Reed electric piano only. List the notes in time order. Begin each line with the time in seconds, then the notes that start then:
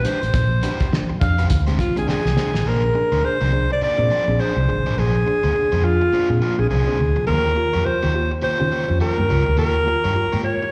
0.04 D4 G4
0.35 A#2 F3
0.63 D4 G4
0.93 D4 G4
1.10 A#2 F3
1.22 D4 G4
1.67 G#3 C4 D4 G4
1.79 A#2 F3
1.96 G#3 C4 D4 G4
2.07 D4 G4
2.25 A#2 F3
2.37 D4 G4
2.66 A#2 F3
2.95 D4 G#4
3.24 D4 G#4
3.41 A#2 F3
3.53 D4 G#4
3.98 C4 D4 G#4
4.11 A#2 F3
4.28 C4 D4 G#4
4.39 D4 G#4
4.57 A#2 F3
4.68 D4 G#4
4.98 A#2 F3
5.27 D4 G#4
5.55 D4 G#4
5.73 A#2 F3
5.84 D4 G#4
6.30 C4 D4 G#4
6.41 A#2 F3
6.58 C4 D4 G#4
6.87 C4 D4 G#4
7.16 A#2 F3
7.27 D#3 A#3
7.57 F4 G4
7.85 F4 G4
8.03 D#3 A#3
8.14 F4 G4
8.60 C#4 F4 G4
8.72 D#3 A#3
8.89 C#4 F4 G4
9.00 F4 G4
9.18 D#3 A#3
9.28 F4 G4
9.57 D#3 A#3
9.86 F4 G4
10.15 F4 G4
10.32 D#3 A#3
10.43 F4 G4